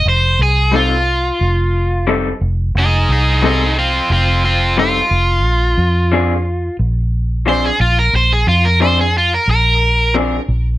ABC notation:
X:1
M:4/4
L:1/16
Q:1/4=89
K:Bb
V:1 name="Overdriven electric guitar"
c2 _A2 F8 z4 | [E_A]2 [EA]2 [EA]2 [CF]2 [CF]2 [CF]2 F4- | F8 z4 c _A F B | c _A F B c A F B B4 z4 |]
V:2 name="Clean electric guitar"
z4 [G,CEA]2 z6 [G,CEA]2 z2 | z4 [G,CEA]2 z6 [G,CEA]2 z2 | z4 [F,CD_A]2 z6 [F,CDA]2 z2 | z4 [F,CD_A]2 z6 [F,CDA]2 z2 |]
V:3 name="Fingered electric bass" clef=bass
F,,,2 C,,6 F,,,6 F,,,2 | F,,,2 C,,6 F,,,6 F,,,2 | B,,,2 F,,6 B,,,6 B,,,2 | B,,,2 F,,6 B,,,6 B,,,2 |]